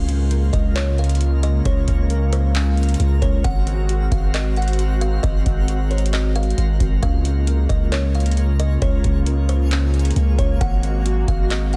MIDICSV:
0, 0, Header, 1, 7, 480
1, 0, Start_track
1, 0, Key_signature, -5, "major"
1, 0, Tempo, 447761
1, 1773, Time_signature, 4, 2, 24, 8
1, 12612, End_track
2, 0, Start_track
2, 0, Title_t, "Kalimba"
2, 0, Program_c, 0, 108
2, 0, Note_on_c, 0, 77, 100
2, 530, Note_off_c, 0, 77, 0
2, 568, Note_on_c, 0, 75, 78
2, 798, Note_off_c, 0, 75, 0
2, 812, Note_on_c, 0, 73, 116
2, 1040, Note_off_c, 0, 73, 0
2, 1061, Note_on_c, 0, 77, 75
2, 1509, Note_off_c, 0, 77, 0
2, 1536, Note_on_c, 0, 75, 84
2, 1763, Note_off_c, 0, 75, 0
2, 1776, Note_on_c, 0, 73, 99
2, 2452, Note_off_c, 0, 73, 0
2, 2496, Note_on_c, 0, 72, 86
2, 2722, Note_off_c, 0, 72, 0
2, 3451, Note_on_c, 0, 73, 87
2, 3680, Note_off_c, 0, 73, 0
2, 3692, Note_on_c, 0, 78, 102
2, 4370, Note_off_c, 0, 78, 0
2, 4415, Note_on_c, 0, 77, 83
2, 4642, Note_off_c, 0, 77, 0
2, 4657, Note_on_c, 0, 75, 90
2, 4883, Note_off_c, 0, 75, 0
2, 4902, Note_on_c, 0, 78, 80
2, 5349, Note_off_c, 0, 78, 0
2, 5375, Note_on_c, 0, 77, 84
2, 5602, Note_off_c, 0, 77, 0
2, 5607, Note_on_c, 0, 75, 97
2, 6287, Note_off_c, 0, 75, 0
2, 6332, Note_on_c, 0, 73, 72
2, 6560, Note_off_c, 0, 73, 0
2, 6575, Note_on_c, 0, 75, 78
2, 6802, Note_off_c, 0, 75, 0
2, 6815, Note_on_c, 0, 77, 88
2, 7491, Note_off_c, 0, 77, 0
2, 7532, Note_on_c, 0, 77, 101
2, 8210, Note_off_c, 0, 77, 0
2, 8247, Note_on_c, 0, 75, 80
2, 8478, Note_off_c, 0, 75, 0
2, 8490, Note_on_c, 0, 73, 107
2, 8720, Note_off_c, 0, 73, 0
2, 8739, Note_on_c, 0, 77, 73
2, 9187, Note_off_c, 0, 77, 0
2, 9215, Note_on_c, 0, 75, 85
2, 9442, Note_off_c, 0, 75, 0
2, 9455, Note_on_c, 0, 73, 101
2, 10131, Note_off_c, 0, 73, 0
2, 10175, Note_on_c, 0, 72, 84
2, 10402, Note_off_c, 0, 72, 0
2, 11133, Note_on_c, 0, 73, 88
2, 11361, Note_off_c, 0, 73, 0
2, 11373, Note_on_c, 0, 78, 103
2, 12050, Note_off_c, 0, 78, 0
2, 12095, Note_on_c, 0, 77, 83
2, 12322, Note_off_c, 0, 77, 0
2, 12338, Note_on_c, 0, 75, 91
2, 12564, Note_off_c, 0, 75, 0
2, 12612, End_track
3, 0, Start_track
3, 0, Title_t, "Synth texture"
3, 0, Program_c, 1, 99
3, 0, Note_on_c, 1, 61, 79
3, 0, Note_on_c, 1, 70, 72
3, 0, Note_on_c, 1, 89, 88
3, 3655, Note_off_c, 1, 61, 0
3, 3693, Note_on_c, 1, 60, 81
3, 3693, Note_on_c, 1, 66, 73
3, 7490, Note_off_c, 1, 89, 0
3, 7494, Note_off_c, 1, 60, 0
3, 7495, Note_off_c, 1, 66, 0
3, 7534, Note_on_c, 1, 61, 77
3, 7534, Note_on_c, 1, 89, 90
3, 9410, Note_off_c, 1, 70, 0
3, 9454, Note_on_c, 1, 68, 75
3, 11335, Note_off_c, 1, 61, 0
3, 11355, Note_off_c, 1, 68, 0
3, 11372, Note_on_c, 1, 60, 77
3, 11373, Note_on_c, 1, 66, 73
3, 11373, Note_on_c, 1, 70, 72
3, 12612, Note_off_c, 1, 60, 0
3, 12612, Note_off_c, 1, 66, 0
3, 12612, Note_off_c, 1, 70, 0
3, 12612, Note_off_c, 1, 89, 0
3, 12612, End_track
4, 0, Start_track
4, 0, Title_t, "Synth keys"
4, 0, Program_c, 2, 88
4, 95, Note_on_c, 2, 61, 76
4, 333, Note_on_c, 2, 70, 81
4, 807, Note_off_c, 2, 61, 0
4, 820, Note_on_c, 2, 61, 90
4, 1522, Note_off_c, 2, 61, 0
4, 1535, Note_on_c, 2, 61, 73
4, 1758, Note_off_c, 2, 61, 0
4, 1771, Note_on_c, 2, 61, 95
4, 1773, Note_off_c, 2, 70, 0
4, 2001, Note_off_c, 2, 61, 0
4, 2014, Note_on_c, 2, 61, 84
4, 2250, Note_on_c, 2, 70, 89
4, 2731, Note_off_c, 2, 61, 0
4, 2743, Note_on_c, 2, 61, 91
4, 3440, Note_off_c, 2, 61, 0
4, 3453, Note_on_c, 2, 61, 73
4, 3691, Note_off_c, 2, 70, 0
4, 3693, Note_off_c, 2, 61, 0
4, 3694, Note_on_c, 2, 60, 99
4, 3927, Note_off_c, 2, 60, 0
4, 3940, Note_on_c, 2, 60, 77
4, 4177, Note_on_c, 2, 66, 83
4, 4636, Note_off_c, 2, 60, 0
4, 4649, Note_on_c, 2, 60, 95
4, 5363, Note_off_c, 2, 60, 0
4, 5376, Note_on_c, 2, 60, 77
4, 5606, Note_off_c, 2, 60, 0
4, 5615, Note_off_c, 2, 66, 0
4, 5618, Note_on_c, 2, 60, 96
4, 5841, Note_off_c, 2, 60, 0
4, 5854, Note_on_c, 2, 60, 76
4, 6091, Note_on_c, 2, 66, 83
4, 6563, Note_off_c, 2, 60, 0
4, 6575, Note_on_c, 2, 60, 92
4, 7272, Note_off_c, 2, 60, 0
4, 7285, Note_on_c, 2, 60, 75
4, 7529, Note_off_c, 2, 60, 0
4, 7532, Note_off_c, 2, 66, 0
4, 7535, Note_on_c, 2, 61, 92
4, 7761, Note_off_c, 2, 61, 0
4, 7774, Note_on_c, 2, 61, 78
4, 8012, Note_on_c, 2, 70, 79
4, 8486, Note_off_c, 2, 61, 0
4, 8499, Note_on_c, 2, 61, 93
4, 9202, Note_off_c, 2, 61, 0
4, 9215, Note_on_c, 2, 61, 75
4, 9438, Note_off_c, 2, 61, 0
4, 9451, Note_on_c, 2, 61, 90
4, 9452, Note_off_c, 2, 70, 0
4, 9681, Note_off_c, 2, 61, 0
4, 9694, Note_on_c, 2, 61, 79
4, 9929, Note_on_c, 2, 70, 89
4, 10411, Note_off_c, 2, 61, 0
4, 10424, Note_on_c, 2, 61, 91
4, 11120, Note_off_c, 2, 61, 0
4, 11133, Note_on_c, 2, 61, 79
4, 11371, Note_off_c, 2, 70, 0
4, 11373, Note_off_c, 2, 61, 0
4, 11375, Note_on_c, 2, 60, 95
4, 11608, Note_off_c, 2, 60, 0
4, 11621, Note_on_c, 2, 60, 77
4, 11857, Note_on_c, 2, 66, 85
4, 12316, Note_off_c, 2, 60, 0
4, 12328, Note_on_c, 2, 60, 95
4, 12612, Note_off_c, 2, 60, 0
4, 12612, Note_off_c, 2, 66, 0
4, 12612, End_track
5, 0, Start_track
5, 0, Title_t, "Analog synth pad"
5, 0, Program_c, 3, 89
5, 0, Note_on_c, 3, 49, 85
5, 0, Note_on_c, 3, 56, 74
5, 0, Note_on_c, 3, 58, 73
5, 0, Note_on_c, 3, 65, 89
5, 3655, Note_off_c, 3, 58, 0
5, 3656, Note_off_c, 3, 49, 0
5, 3656, Note_off_c, 3, 56, 0
5, 3656, Note_off_c, 3, 65, 0
5, 3693, Note_on_c, 3, 56, 82
5, 3693, Note_on_c, 3, 60, 74
5, 3693, Note_on_c, 3, 66, 92
5, 7495, Note_off_c, 3, 60, 0
5, 7495, Note_off_c, 3, 66, 0
5, 7535, Note_on_c, 3, 49, 80
5, 7535, Note_on_c, 3, 58, 76
5, 7535, Note_on_c, 3, 65, 90
5, 9435, Note_off_c, 3, 58, 0
5, 9455, Note_on_c, 3, 58, 74
5, 11330, Note_off_c, 3, 56, 0
5, 11336, Note_off_c, 3, 49, 0
5, 11336, Note_off_c, 3, 65, 0
5, 11374, Note_on_c, 3, 56, 80
5, 11374, Note_on_c, 3, 66, 85
5, 12612, Note_off_c, 3, 56, 0
5, 12612, Note_off_c, 3, 58, 0
5, 12612, Note_off_c, 3, 66, 0
5, 12612, End_track
6, 0, Start_track
6, 0, Title_t, "808-style bass"
6, 0, Program_c, 4, 38
6, 0, Note_on_c, 4, 37, 115
6, 545, Note_off_c, 4, 37, 0
6, 572, Note_on_c, 4, 37, 104
6, 1729, Note_off_c, 4, 37, 0
6, 1774, Note_on_c, 4, 37, 114
6, 2004, Note_off_c, 4, 37, 0
6, 2015, Note_on_c, 4, 37, 107
6, 3171, Note_off_c, 4, 37, 0
6, 3212, Note_on_c, 4, 37, 109
6, 3443, Note_off_c, 4, 37, 0
6, 3452, Note_on_c, 4, 37, 111
6, 3683, Note_off_c, 4, 37, 0
6, 3693, Note_on_c, 4, 32, 113
6, 4384, Note_off_c, 4, 32, 0
6, 4412, Note_on_c, 4, 32, 104
6, 5569, Note_off_c, 4, 32, 0
6, 5613, Note_on_c, 4, 32, 116
6, 5843, Note_off_c, 4, 32, 0
6, 5855, Note_on_c, 4, 32, 107
6, 7011, Note_off_c, 4, 32, 0
6, 7053, Note_on_c, 4, 32, 112
6, 7283, Note_off_c, 4, 32, 0
6, 7292, Note_on_c, 4, 32, 106
6, 7523, Note_off_c, 4, 32, 0
6, 7533, Note_on_c, 4, 37, 114
6, 8224, Note_off_c, 4, 37, 0
6, 8252, Note_on_c, 4, 37, 99
6, 9410, Note_off_c, 4, 37, 0
6, 9453, Note_on_c, 4, 37, 117
6, 9684, Note_off_c, 4, 37, 0
6, 9695, Note_on_c, 4, 37, 106
6, 10851, Note_off_c, 4, 37, 0
6, 10893, Note_on_c, 4, 37, 111
6, 11123, Note_off_c, 4, 37, 0
6, 11132, Note_on_c, 4, 37, 105
6, 11363, Note_off_c, 4, 37, 0
6, 11373, Note_on_c, 4, 32, 113
6, 12064, Note_off_c, 4, 32, 0
6, 12092, Note_on_c, 4, 32, 99
6, 12612, Note_off_c, 4, 32, 0
6, 12612, End_track
7, 0, Start_track
7, 0, Title_t, "Drums"
7, 92, Note_on_c, 9, 42, 79
7, 199, Note_off_c, 9, 42, 0
7, 331, Note_on_c, 9, 42, 81
7, 438, Note_off_c, 9, 42, 0
7, 572, Note_on_c, 9, 36, 103
7, 573, Note_on_c, 9, 42, 72
7, 679, Note_off_c, 9, 36, 0
7, 680, Note_off_c, 9, 42, 0
7, 812, Note_on_c, 9, 42, 77
7, 820, Note_on_c, 9, 39, 123
7, 919, Note_off_c, 9, 42, 0
7, 927, Note_off_c, 9, 39, 0
7, 1053, Note_on_c, 9, 42, 37
7, 1113, Note_off_c, 9, 42, 0
7, 1113, Note_on_c, 9, 42, 47
7, 1173, Note_off_c, 9, 42, 0
7, 1173, Note_on_c, 9, 42, 56
7, 1233, Note_off_c, 9, 42, 0
7, 1233, Note_on_c, 9, 42, 65
7, 1293, Note_off_c, 9, 42, 0
7, 1293, Note_on_c, 9, 42, 73
7, 1401, Note_off_c, 9, 42, 0
7, 1534, Note_on_c, 9, 42, 75
7, 1642, Note_off_c, 9, 42, 0
7, 1773, Note_on_c, 9, 36, 113
7, 1773, Note_on_c, 9, 42, 74
7, 1881, Note_off_c, 9, 36, 0
7, 1881, Note_off_c, 9, 42, 0
7, 2012, Note_on_c, 9, 42, 79
7, 2015, Note_on_c, 9, 36, 95
7, 2120, Note_off_c, 9, 42, 0
7, 2122, Note_off_c, 9, 36, 0
7, 2251, Note_on_c, 9, 42, 86
7, 2359, Note_off_c, 9, 42, 0
7, 2493, Note_on_c, 9, 42, 72
7, 2600, Note_off_c, 9, 42, 0
7, 2732, Note_on_c, 9, 42, 78
7, 2740, Note_on_c, 9, 39, 125
7, 2839, Note_off_c, 9, 42, 0
7, 2847, Note_off_c, 9, 39, 0
7, 2974, Note_on_c, 9, 42, 38
7, 3034, Note_off_c, 9, 42, 0
7, 3034, Note_on_c, 9, 42, 48
7, 3094, Note_off_c, 9, 42, 0
7, 3094, Note_on_c, 9, 42, 53
7, 3154, Note_off_c, 9, 42, 0
7, 3154, Note_on_c, 9, 42, 63
7, 3214, Note_off_c, 9, 42, 0
7, 3214, Note_on_c, 9, 42, 73
7, 3321, Note_off_c, 9, 42, 0
7, 3452, Note_on_c, 9, 36, 91
7, 3455, Note_on_c, 9, 42, 74
7, 3559, Note_off_c, 9, 36, 0
7, 3562, Note_off_c, 9, 42, 0
7, 3693, Note_on_c, 9, 36, 118
7, 3694, Note_on_c, 9, 42, 72
7, 3801, Note_off_c, 9, 36, 0
7, 3801, Note_off_c, 9, 42, 0
7, 3933, Note_on_c, 9, 42, 76
7, 4040, Note_off_c, 9, 42, 0
7, 4172, Note_on_c, 9, 42, 81
7, 4279, Note_off_c, 9, 42, 0
7, 4412, Note_on_c, 9, 36, 102
7, 4414, Note_on_c, 9, 42, 72
7, 4519, Note_off_c, 9, 36, 0
7, 4521, Note_off_c, 9, 42, 0
7, 4652, Note_on_c, 9, 42, 77
7, 4661, Note_on_c, 9, 39, 126
7, 4759, Note_off_c, 9, 42, 0
7, 4768, Note_off_c, 9, 39, 0
7, 4893, Note_on_c, 9, 42, 37
7, 4953, Note_off_c, 9, 42, 0
7, 4953, Note_on_c, 9, 42, 46
7, 5013, Note_off_c, 9, 42, 0
7, 5013, Note_on_c, 9, 42, 53
7, 5073, Note_off_c, 9, 42, 0
7, 5073, Note_on_c, 9, 42, 60
7, 5134, Note_off_c, 9, 42, 0
7, 5134, Note_on_c, 9, 42, 67
7, 5241, Note_off_c, 9, 42, 0
7, 5375, Note_on_c, 9, 42, 75
7, 5482, Note_off_c, 9, 42, 0
7, 5613, Note_on_c, 9, 36, 116
7, 5614, Note_on_c, 9, 42, 73
7, 5721, Note_off_c, 9, 36, 0
7, 5721, Note_off_c, 9, 42, 0
7, 5853, Note_on_c, 9, 42, 77
7, 5855, Note_on_c, 9, 36, 99
7, 5960, Note_off_c, 9, 42, 0
7, 5962, Note_off_c, 9, 36, 0
7, 6091, Note_on_c, 9, 42, 83
7, 6198, Note_off_c, 9, 42, 0
7, 6333, Note_on_c, 9, 42, 44
7, 6413, Note_off_c, 9, 42, 0
7, 6413, Note_on_c, 9, 42, 57
7, 6493, Note_off_c, 9, 42, 0
7, 6493, Note_on_c, 9, 42, 73
7, 6571, Note_off_c, 9, 42, 0
7, 6571, Note_on_c, 9, 42, 76
7, 6580, Note_on_c, 9, 39, 126
7, 6679, Note_off_c, 9, 42, 0
7, 6687, Note_off_c, 9, 39, 0
7, 6813, Note_on_c, 9, 42, 53
7, 6893, Note_off_c, 9, 42, 0
7, 6893, Note_on_c, 9, 42, 50
7, 6973, Note_off_c, 9, 42, 0
7, 6973, Note_on_c, 9, 42, 52
7, 7053, Note_off_c, 9, 42, 0
7, 7053, Note_on_c, 9, 42, 70
7, 7160, Note_off_c, 9, 42, 0
7, 7292, Note_on_c, 9, 36, 88
7, 7294, Note_on_c, 9, 42, 81
7, 7399, Note_off_c, 9, 36, 0
7, 7401, Note_off_c, 9, 42, 0
7, 7533, Note_on_c, 9, 36, 120
7, 7533, Note_on_c, 9, 42, 72
7, 7640, Note_off_c, 9, 36, 0
7, 7641, Note_off_c, 9, 42, 0
7, 7772, Note_on_c, 9, 42, 81
7, 7880, Note_off_c, 9, 42, 0
7, 8011, Note_on_c, 9, 42, 81
7, 8118, Note_off_c, 9, 42, 0
7, 8251, Note_on_c, 9, 36, 101
7, 8253, Note_on_c, 9, 42, 69
7, 8358, Note_off_c, 9, 36, 0
7, 8360, Note_off_c, 9, 42, 0
7, 8491, Note_on_c, 9, 42, 75
7, 8500, Note_on_c, 9, 39, 120
7, 8598, Note_off_c, 9, 42, 0
7, 8607, Note_off_c, 9, 39, 0
7, 8733, Note_on_c, 9, 42, 38
7, 8793, Note_off_c, 9, 42, 0
7, 8793, Note_on_c, 9, 42, 47
7, 8853, Note_off_c, 9, 42, 0
7, 8853, Note_on_c, 9, 42, 55
7, 8913, Note_off_c, 9, 42, 0
7, 8913, Note_on_c, 9, 42, 60
7, 8974, Note_off_c, 9, 42, 0
7, 8974, Note_on_c, 9, 42, 71
7, 9081, Note_off_c, 9, 42, 0
7, 9214, Note_on_c, 9, 42, 76
7, 9322, Note_off_c, 9, 42, 0
7, 9453, Note_on_c, 9, 36, 115
7, 9453, Note_on_c, 9, 42, 74
7, 9560, Note_off_c, 9, 36, 0
7, 9561, Note_off_c, 9, 42, 0
7, 9693, Note_on_c, 9, 42, 75
7, 9695, Note_on_c, 9, 36, 97
7, 9800, Note_off_c, 9, 42, 0
7, 9802, Note_off_c, 9, 36, 0
7, 9931, Note_on_c, 9, 42, 84
7, 10039, Note_off_c, 9, 42, 0
7, 10173, Note_on_c, 9, 42, 74
7, 10280, Note_off_c, 9, 42, 0
7, 10412, Note_on_c, 9, 42, 75
7, 10420, Note_on_c, 9, 39, 126
7, 10519, Note_off_c, 9, 42, 0
7, 10527, Note_off_c, 9, 39, 0
7, 10653, Note_on_c, 9, 42, 36
7, 10714, Note_off_c, 9, 42, 0
7, 10714, Note_on_c, 9, 42, 45
7, 10774, Note_off_c, 9, 42, 0
7, 10774, Note_on_c, 9, 42, 55
7, 10833, Note_off_c, 9, 42, 0
7, 10833, Note_on_c, 9, 42, 60
7, 10894, Note_off_c, 9, 42, 0
7, 10894, Note_on_c, 9, 42, 69
7, 11001, Note_off_c, 9, 42, 0
7, 11132, Note_on_c, 9, 36, 86
7, 11135, Note_on_c, 9, 42, 76
7, 11239, Note_off_c, 9, 36, 0
7, 11242, Note_off_c, 9, 42, 0
7, 11374, Note_on_c, 9, 36, 117
7, 11374, Note_on_c, 9, 42, 75
7, 11481, Note_off_c, 9, 36, 0
7, 11481, Note_off_c, 9, 42, 0
7, 11613, Note_on_c, 9, 42, 79
7, 11721, Note_off_c, 9, 42, 0
7, 11852, Note_on_c, 9, 42, 85
7, 11960, Note_off_c, 9, 42, 0
7, 12092, Note_on_c, 9, 36, 102
7, 12094, Note_on_c, 9, 42, 71
7, 12199, Note_off_c, 9, 36, 0
7, 12201, Note_off_c, 9, 42, 0
7, 12332, Note_on_c, 9, 42, 77
7, 12341, Note_on_c, 9, 39, 122
7, 12440, Note_off_c, 9, 42, 0
7, 12448, Note_off_c, 9, 39, 0
7, 12574, Note_on_c, 9, 42, 37
7, 12612, Note_off_c, 9, 42, 0
7, 12612, End_track
0, 0, End_of_file